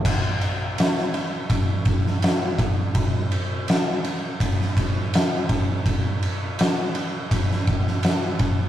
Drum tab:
CC |x---------------|----------------|----------------|
RD |x-x-x-x-x-x-x-x-|x-x-x-x-x-x-x-x-|x-x-x-x-x-x-x-x-|
SD |----o------oo---|----o----o--o---|----o----o-oo---|
BD |o-------o-o---o-|o-------o-o---o-|o-------o-o---o-|